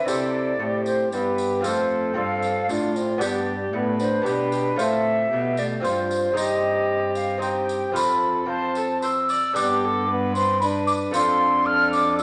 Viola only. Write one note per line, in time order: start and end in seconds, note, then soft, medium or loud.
0.08 0.63 A4 medium
0.61 1.13 G4 medium
1.14 1.67 G4 medium
1.66 2.16 A4 medium
2.17 2.71 A4 medium
2.70 3.24 F4 medium
3.23 3.76 G4 medium
3.75 4.28 B4 medium
4.27 4.53 G4 medium
4.53 4.61 G4 medium
4.80 5.31 A4 medium
5.32 5.86 G4 medium
5.85 6.37 F4 medium
6.38 7.39 G4 medium
7.42 7.97 G4 medium
7.95 8.49 A4 medium
8.50 8.74 C5 medium
8.78 8.86 A4 soft
9.02 9.10 C5 medium
9.29 9.55 D5 medium
9.56 9.86 G4 medium
9.85 10.10 A4 medium
10.11 10.61 B4 medium
10.62 11.16 B4 medium
11.15 11.66 A4 medium
11.66 12.21 A4 medium
12.19 12.23 F4 medium